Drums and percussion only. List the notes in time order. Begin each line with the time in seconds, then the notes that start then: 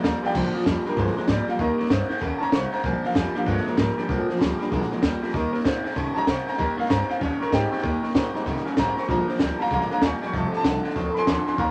0.04 kick, snare, hi-hat pedal
0.24 snare
0.30 snare
0.35 kick, snare, crash
0.55 snare
0.61 snare
0.66 kick, snare, hi-hat pedal
0.86 snare
0.96 kick, snare
1.07 snare
1.17 snare
1.28 kick, snare, hi-hat pedal
1.48 snare
1.58 kick, snare
1.79 snare
1.85 snare
1.90 kick, snare, hi-hat pedal
2.10 snare
2.17 snare
2.21 kick, snare
2.41 snare
2.52 kick, snare, hi-hat pedal
2.72 snare
2.78 snare
2.84 kick, snare
3.04 snare
3.09 snare
3.15 kick, snare, hi-hat pedal
3.35 snare
3.46 kick, snare
3.57 snare
3.66 snare
3.77 kick, snare, hi-hat pedal
3.98 snare
4.09 kick, snare
4.29 snare
4.35 snare
4.41 kick, snare, hi-hat pedal
4.61 snare
4.72 kick, snare
4.82 snare
4.92 snare
5.03 kick, snare, hi-hat pedal
5.22 snare
5.28 snare
5.34 kick, snare
5.54 snare
5.60 snare
5.65 kick, snare, hi-hat pedal
5.85 snare
5.91 snare
5.96 kick, snare
6.16 snare
6.27 kick, snare, hi-hat pedal
6.48 snare
6.53 snare
6.59 kick, snare
6.80 snare
6.85 snare
6.90 kick, snare, hi-hat pedal
7.10 snare
7.21 kick, snare
7.41 snare
7.52 kick, snare, hi-hat pedal
7.73 snare
7.78 snare
7.84 kick, snare
8.03 snare
8.09 snare
8.15 kick, snare, hi-hat pedal
8.35 snare
8.46 kick, snare
8.56 snare
8.66 snare
8.77 kick, snare, hi-hat pedal
8.97 snare
9.03 snare
9.09 kick, snare
9.28 snare
9.34 snare
9.39 kick, snare, hi-hat pedal
9.60 snare
9.65 snare
9.71 kick, snare
9.81 snare
9.91 snare
10.02 kick, snare, hi-hat pedal
10.22 snare
10.33 kick, snare
10.53 snare
10.59 snare
10.64 kick, snare, hi-hat pedal
10.84 snare
10.90 snare
10.96 kick, snare
11.15 snare
11.27 kick, snare, hi-hat pedal
11.47 snare
11.58 kick, snare